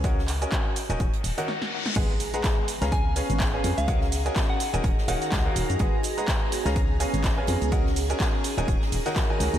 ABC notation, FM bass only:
X:1
M:4/4
L:1/16
Q:"Swing 16ths" 1/4=125
K:G#dor
V:1 name="FM bass" clef=bass
C,,3 z4 D,,, D,,, z D,,, z4 z | G,,, z6 C,,3 z G,,,2 z E,, C,,- | C,,3 z4 D,,, D,,, z D,,, z C,, z D,,, F,, | G,,, z6 C,,3 z G,,,2 z E,, C,,- |
C,,3 z4 D,,, D,,, z D,,, z3 C,, D,, |]